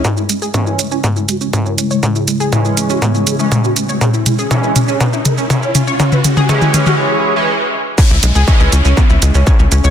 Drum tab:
CC |----------------|----------------|----------------|----------------|
HH |--x---x---x---x-|--x---x---x---x-|--x---x---x---x-|--x---x---------|
SH |xxxxxxxxxxxxxxxx|xxxxxxxxxxxxxxxx|xxxxxxxxxxxxxxxx|xxxxxxxx--------|
T2 |o---o---o---o---|o---o---o---o---|o-o-o-o-o-o-o-o-|oooooooo--------|
BD |o---o---o---o---|o---o---o---o---|o---o---o---o---|o---o-----------|

CC |x---------------|
HH |--x---x---x---x-|
SH |xxxxxxxxxxxxxxxx|
T2 |----------------|
BD |o---o---o---o---|